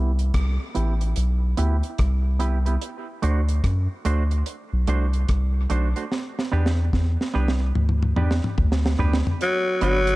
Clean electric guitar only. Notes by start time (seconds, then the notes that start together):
Already playing: B3 E4 G4 B4
0.75 B3 E4 G4 B4
1.01 muted clean electric guitar stroke
1.57 B3 E4 G4 B4
2.39 B3 E4 G4 B4
2.66 B3 E4 G4 B4
3.22 A3 D4 F#4 C5
4.05 A3 D4 F#4 C5
4.32 muted clean electric guitar stroke
4.88 A3 D4 F#4 C5
5.70 A3 D4 F#4 C5
5.96 A3 D4 F#4 C5
6.52 B3 D4 G4 B4
7.34 B3 D4 G4 B4
7.60 muted clean electric guitar stroke
8.16 B3 D4 G4 B4
8.99 B3 D4 G4 B4
9.81 B3 D4 F#4 B4